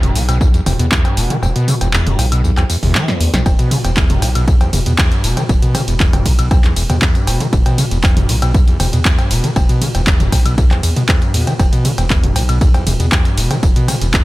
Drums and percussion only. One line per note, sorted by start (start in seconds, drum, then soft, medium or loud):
0.03 closed hi-hat medium
0.03 mid tom medium
0.03 tambourine soft
0.15 open hi-hat loud
0.15 tambourine medium
0.29 closed hi-hat medium
0.29 tambourine soft
0.29 cowbell medium
0.29 high woodblock medium
0.41 kick loud
0.41 tambourine medium
0.54 closed hi-hat soft
0.54 tambourine soft
0.66 mid tom medium
0.66 open hi-hat loud
0.66 tambourine medium
0.66 cowbell medium
0.79 closed hi-hat medium
0.79 tambourine soft
0.92 kick loud
0.92 clap loud
0.92 tambourine medium
1.05 closed hi-hat soft
1.05 tambourine soft
1.05 cowbell medium
1.17 open hi-hat loud
1.17 tambourine medium
1.30 closed hi-hat medium
1.30 mid tom medium
1.30 tambourine soft
1.43 tambourine medium
1.43 cowbell medium
1.56 closed hi-hat medium
1.56 tambourine soft
1.68 mid tom medium
1.68 open hi-hat loud
1.68 tambourine medium
1.81 closed hi-hat medium
1.81 tambourine soft
1.81 cowbell medium
1.94 clap loud
1.94 tambourine soft
2.07 closed hi-hat medium
2.07 mid tom medium
2.07 tambourine soft
2.19 open hi-hat loud
2.19 tambourine medium
2.19 cowbell medium
2.32 closed hi-hat medium
2.32 tambourine soft
2.32 high woodblock medium
2.44 tambourine medium
2.57 clap soft
2.57 closed hi-hat soft
2.57 tambourine soft
2.57 cowbell medium
2.57 high woodblock medium
2.70 open hi-hat loud
2.70 tambourine medium
2.83 mid tom medium
2.83 open hi-hat medium
2.83 tambourine soft
2.95 snare medium
2.95 clap loud
2.95 tambourine soft
2.95 cowbell medium
3.08 snare medium
3.08 closed hi-hat soft
3.08 tambourine soft
3.21 open hi-hat loud
3.21 tambourine medium
3.34 snare medium
3.34 closed hi-hat medium
3.34 mid tom medium
3.34 tambourine soft
3.34 cowbell medium
3.46 kick loud
3.46 ride medium
3.46 tambourine medium
3.46 cowbell medium
3.59 closed hi-hat medium
3.59 tambourine soft
3.71 mid tom medium
3.71 open hi-hat loud
3.71 ride medium
3.71 tambourine medium
3.85 closed hi-hat medium
3.85 tambourine soft
3.85 cowbell medium
3.97 kick loud
3.97 clap loud
3.97 ride medium
3.97 tambourine soft
4.10 closed hi-hat medium
4.10 mid tom loud
4.10 tambourine soft
4.22 open hi-hat loud
4.22 ride medium
4.22 tambourine medium
4.22 cowbell medium
4.35 closed hi-hat medium
4.35 tambourine soft
4.35 high woodblock medium
4.48 kick loud
4.48 ride medium
4.48 tambourine soft
4.61 closed hi-hat soft
4.61 tambourine soft
4.61 cowbell medium
4.73 mid tom loud
4.73 open hi-hat loud
4.73 ride medium
4.73 tambourine medium
4.86 closed hi-hat medium
4.86 tambourine soft
4.98 kick loud
4.98 clap loud
4.98 ride medium
4.98 tambourine soft
4.98 cowbell medium
5.12 closed hi-hat soft
5.12 tambourine soft
5.24 open hi-hat loud
5.24 ride medium
5.24 tambourine medium
5.37 closed hi-hat medium
5.37 mid tom medium
5.37 tambourine soft
5.37 cowbell medium
5.49 kick loud
5.49 ride medium
5.49 tambourine soft
5.62 closed hi-hat medium
5.62 tambourine soft
5.75 mid tom medium
5.75 open hi-hat loud
5.75 ride medium
5.75 tambourine medium
5.75 cowbell medium
5.88 closed hi-hat medium
5.88 tambourine soft
6.00 kick loud
6.00 clap loud
6.00 ride medium
6.00 tambourine soft
6.13 closed hi-hat medium
6.13 mid tom loud
6.13 tambourine soft
6.13 cowbell medium
6.26 kick medium
6.26 open hi-hat loud
6.26 ride medium
6.26 tambourine medium
6.39 closed hi-hat medium
6.39 tambourine soft
6.39 high woodblock medium
6.51 kick loud
6.51 ride medium
6.51 tambourine soft
6.51 cowbell medium
6.64 clap soft
6.64 closed hi-hat soft
6.64 tambourine soft
6.76 open hi-hat loud
6.76 ride medium
6.76 tambourine medium
6.90 closed hi-hat medium
6.90 mid tom medium
6.90 tambourine soft
6.90 cowbell medium
7.02 kick loud
7.02 clap loud
7.02 ride medium
7.02 tambourine soft
7.15 closed hi-hat soft
7.15 tambourine soft
7.27 open hi-hat loud
7.27 ride medium
7.27 tambourine medium
7.27 cowbell medium
7.40 closed hi-hat medium
7.40 mid tom medium
7.40 tambourine soft
7.53 kick loud
7.53 ride medium
7.53 tambourine soft
7.66 closed hi-hat medium
7.66 tambourine soft
7.66 cowbell medium
7.78 mid tom medium
7.78 open hi-hat loud
7.78 ride medium
7.78 tambourine medium
7.91 closed hi-hat medium
7.91 tambourine soft
8.04 kick loud
8.04 clap loud
8.04 ride medium
8.04 tambourine soft
8.04 cowbell medium
8.17 closed hi-hat medium
8.17 mid tom loud
8.17 tambourine soft
8.29 open hi-hat loud
8.29 ride medium
8.29 tambourine medium
8.42 closed hi-hat medium
8.42 tambourine soft
8.42 cowbell medium
8.42 high woodblock medium
8.54 kick loud
8.54 ride medium
8.54 tambourine soft
8.68 closed hi-hat soft
8.68 tambourine soft
8.80 mid tom medium
8.80 open hi-hat loud
8.80 ride medium
8.80 tambourine medium
8.80 cowbell medium
8.93 closed hi-hat medium
8.93 tambourine soft
9.05 kick loud
9.05 clap loud
9.05 ride medium
9.05 tambourine soft
9.18 closed hi-hat soft
9.18 tambourine soft
9.18 cowbell medium
9.31 open hi-hat loud
9.31 ride medium
9.31 tambourine medium
9.44 closed hi-hat medium
9.44 mid tom medium
9.44 tambourine soft
9.56 kick loud
9.56 ride medium
9.56 tambourine soft
9.56 cowbell medium
9.69 closed hi-hat medium
9.69 tambourine soft
9.82 mid tom medium
9.82 open hi-hat loud
9.82 ride medium
9.82 tambourine medium
9.95 closed hi-hat medium
9.95 tambourine soft
9.95 cowbell medium
10.07 kick loud
10.07 clap loud
10.07 ride medium
10.07 tambourine soft
10.20 closed hi-hat soft
10.20 mid tom medium
10.20 tambourine soft
10.32 kick medium
10.32 open hi-hat loud
10.32 ride medium
10.32 tambourine medium
10.32 cowbell medium
10.46 closed hi-hat medium
10.46 tambourine soft
10.46 high woodblock medium
10.58 kick loud
10.58 ride medium
10.58 tambourine soft
10.71 clap soft
10.71 closed hi-hat soft
10.71 tambourine soft
10.71 cowbell medium
10.83 open hi-hat loud
10.83 ride medium
10.83 tambourine medium
10.96 closed hi-hat medium
10.96 mid tom medium
10.96 tambourine soft
11.09 kick loud
11.09 clap loud
11.09 ride medium
11.09 tambourine soft
11.09 cowbell medium
11.22 closed hi-hat soft
11.22 tambourine soft
11.34 open hi-hat loud
11.34 ride medium
11.34 tambourine medium
11.47 closed hi-hat medium
11.47 mid tom medium
11.47 tambourine soft
11.47 cowbell medium
11.60 kick loud
11.60 ride medium
11.60 tambourine soft
11.60 cowbell medium
11.73 closed hi-hat soft
11.73 tambourine soft
11.85 mid tom medium
11.85 open hi-hat loud
11.85 ride medium
11.85 tambourine medium
11.98 closed hi-hat medium
11.98 tambourine soft
11.98 cowbell medium
12.10 kick loud
12.10 clap loud
12.10 ride medium
12.10 tambourine soft
12.24 closed hi-hat medium
12.24 mid tom medium
12.24 tambourine soft
12.36 open hi-hat loud
12.36 ride medium
12.36 tambourine medium
12.36 cowbell medium
12.49 closed hi-hat medium
12.49 tambourine soft
12.49 high woodblock medium
12.61 kick loud
12.61 ride medium
12.61 tambourine soft
12.74 closed hi-hat soft
12.74 tambourine soft
12.74 cowbell medium
12.87 mid tom medium
12.87 open hi-hat loud
12.87 ride medium
12.87 tambourine medium
13.00 closed hi-hat medium
13.00 tambourine soft
13.12 kick loud
13.12 clap loud
13.12 ride medium
13.12 tambourine soft
13.12 cowbell medium
13.25 closed hi-hat soft
13.25 tambourine soft
13.38 open hi-hat loud
13.38 ride medium
13.38 tambourine medium
13.51 closed hi-hat medium
13.51 mid tom medium
13.51 tambourine soft
13.51 cowbell medium
13.63 kick loud
13.63 ride medium
13.63 tambourine medium
13.76 closed hi-hat medium
13.76 tambourine soft
13.88 mid tom medium
13.88 open hi-hat loud
13.88 ride medium
13.88 tambourine medium
13.88 cowbell medium
14.02 closed hi-hat medium
14.02 tambourine soft
14.14 kick loud
14.14 clap loud
14.14 ride medium
14.14 tambourine soft